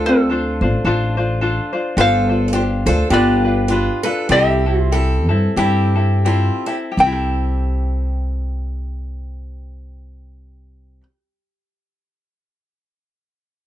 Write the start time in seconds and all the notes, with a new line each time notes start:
Already playing: D2 A4
0.06 C4 D4 F4 A4 C5
0.30 D4 F4 A4 C5
0.61 A1 D4 F4 C5
0.85 A1 D4 F4 A4 C5
1.17 D4 F4 C5
1.41 D4 F4 A4 C5
1.73 D4 F4 C5
1.97 G1 D4 F4 G4 A4 C5 F5
2.29 D4 F4 C5
2.48 A4
2.53 D4 F4 G4 C5
2.86 D2 D4 F4 A4 C5
3.10 G1 D4 F4 G4 B4 D5
3.44 D4 F4 B4
3.68 D4 F4 G4 B4
4.03 D4 F4 A4 B4
4.29 C2 C4 E4 G4 A4 D#5
4.49 E5
4.66 C4 E4 A4
4.79 F4
4.92 C4 E4 G4 A4
5.29 G2 C4 E4 A4
5.56 G2 C4 E4 G4 A4
5.95 C4 E4 A4
6.25 C4 E4 F4 G4 A4
6.66 C4 E4 G4 A4
6.92 G4
6.97 C2 C4 G4 G5
7.06 E4
7.12 A4